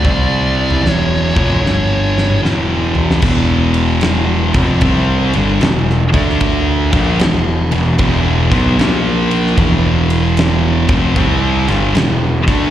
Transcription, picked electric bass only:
0.05 C2
0.85 E1
1.37 F1
1.65 G1
2.45 E1
3.22 E1
4.55 F1
4.81 C2
5.35 G1
5.61 E1
6.14 D2
6.93 A#1
7.20 E1
7.73 E1
7.99 E1
8.51 B1
8.79 A#1
9.57 E1
10.89 F1
11.16 C2
11.68 G1
11.96 E1
12.48 D2

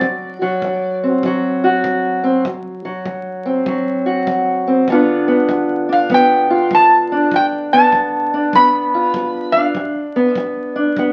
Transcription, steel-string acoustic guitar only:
Already playing: F#3 F#4
0.02 D2
0.42 F#3
0.64 D2
1.03 C4
1.24 D2 F#3
1.64 F#4
1.84 D2
2.24 C4
2.45 D2
2.85 F#3
3.06 D2
3.46 C4
3.66 D2 F#3
4.06 F#4
4.28 D2
4.67 C4
4.89 G2 D3 B3 D4 F4
5.28 B3
5.49 G2
5.89 D4
6.10 G2 B3
6.50 F4
6.72 G2
7.12 D4
7.34 G2
7.73 B3
7.94 G2
8.34 D4
8.55 G2 B3
8.94 F4
9.17 G2
9.56 D4
9.76 G2
10.16 B3
10.37 G2
10.76 D4
10.98 G2 B3

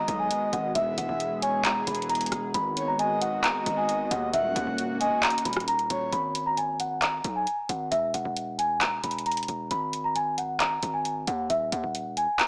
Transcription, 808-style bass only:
0.08 B1
0.53 G#1
0.75 E1
0.98 E1
1.09 E1
1.87 E1
2.32 E1
2.54 G#1
3.66 G#1
4.11 D#2
4.33 D#1
4.56 D#2
4.67 D#1
4.89 E1
5.45 D#1
5.90 D#1
6.12 G#1
7.24 B1
7.69 G#1
7.92 E1
8.14 E1
8.25 E1
9.04 E1
9.48 E1
9.71 G#1
10.83 G#1
11.27 D#2
11.50 D#1
11.72 D#2
11.83 D#1
12.06 E1

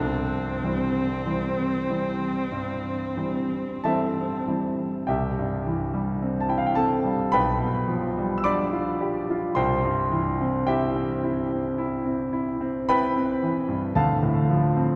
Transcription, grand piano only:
0.00 C2
0.64 E3 G3 C4
1.26 E3 G3 C4
1.89 E3 G3 C4
2.52 G2
3.17 E3 G3 C4
3.84 E3 G3 C4 A4 E5 A5
4.47 E3 G3 C4
5.07 C2 G4 E5 G5
5.39 G2
5.67 E3
5.94 G3
6.22 C4
6.40 A5
6.49 E4 G5
6.58 F5
6.67 G5
6.75 C4 A4 A5
7.04 G3
7.32 B1 B4 G5 B5
7.60 B2
7.88 F3
8.18 G3
8.38 E6
8.44 D4 D5 B5 D6
8.73 F4
9.01 G4
9.30 F4
9.55 C2 C5 G5 C6
9.85 G2
10.12 E3
10.41 C4
10.67 E4 G4 E5 G5
10.96 C4
11.24 E4
11.51 C4
11.78 E4
12.05 C4
12.33 E4
12.61 C4
12.89 E4 B4 G5 B5
13.16 C4
13.43 E3
13.68 G2
13.95 D2 A4 F5 A5
14.23 A2
14.50 F3
14.76 C4

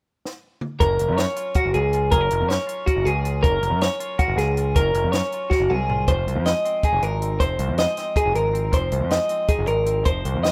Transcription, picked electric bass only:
0.81 F#1
1.00 F1
1.09 F#2
1.65 F#1
1.75 C#2
2.12 F#1
2.32 F1
2.41 F#2
2.96 F#1
3.06 C#2
3.44 F#1
3.61 F1
3.70 F#2
4.28 F#1
4.36 C#2
4.76 F#1
4.94 F1
5.04 F#2
5.60 F#1
5.70 C2
6.08 F1
6.27 C2
6.35 F2
6.93 F1
7.02 G#1
7.40 F1
7.59 C2
7.69 F2
8.26 F1
8.35 G#1
8.73 F1
8.92 C2
9.00 F2
9.59 F1
9.68 G#1
10.06 F1
10.25 C2
10.34 F2

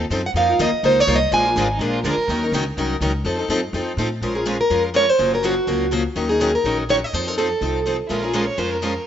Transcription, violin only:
1.56 D4
1.72 D#4
1.88 F4
2.04 A#4
8.07 E4 F4
8.22 G#4
8.34 A#4
8.46 C#5
8.58 C5
8.71 A#4

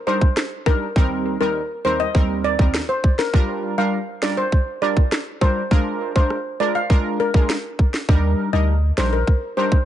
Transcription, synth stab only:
0.07 G3 D4 D#4 A#4
0.66 G3 D4 D#4 A#4
0.96 D#2 G3 C4 D#4 A#4
1.41 D#2 G3 C4 D#4 A#4
1.85 D#2 G3 C4 D#4 A#4
2.15 D#2 G3 C4 D#4 A#4
2.59 D#2 G3 C4 D#4 A#4
3.34 G3 D4 F4 A#4
3.78 G3 D4 F4 A#4
4.22 G3 D4 F4 A#4
4.82 G3 D4 F4 A#4
5.41 G3 D4 F4 A#4
5.71 G#3 D4 F4 A#4
6.16 G#3 D4 F4 A#4
6.60 G#3 D4 F4 A#4
6.90 G#3 D4 F4 A#4
7.34 G#3 D4 F4 A#4
8.09 G3 D4 D#4 A#4
8.53 G3 D4 D#4 A#4
8.98 G3 D4 D#4 A#4
9.57 G3 D4 D#4 A#4

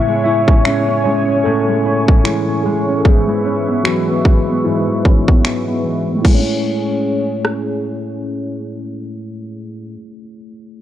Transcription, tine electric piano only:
Already playing: C#3 G#3 B3 E4 E5
0.24 E4 E5
0.64 C#4 C#5
1.04 C#4 C#5
1.44 A3 A4
2.24 E3 E4
2.63 G#3 G#4
2.98 A4
3.04 E3 G#3 B3 G#4
3.84 F#3 F#4
4.64 E3 E4
5.05 E3 G#3 B3
6.15 A3
6.22 E4
6.28 G#4
6.35 C#5

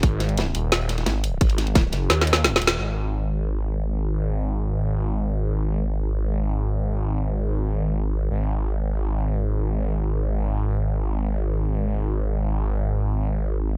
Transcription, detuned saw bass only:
0.03 G#1
0.55 D#1
1.06 G#1
1.41 G#1
1.93 F#1
2.10 D#2
2.62 D#1
2.79 G#1
8.31 G#1

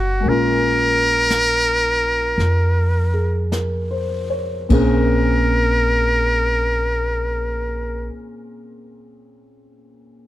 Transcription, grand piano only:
Already playing: A#3 C4 D#4 F#4 F5
0.20 G#3 A#3
0.27 C#4 F4
3.14 G#4
3.52 A#4
3.91 C5
4.30 C#5
4.69 A#2 A#3 C4 C#4 G#4

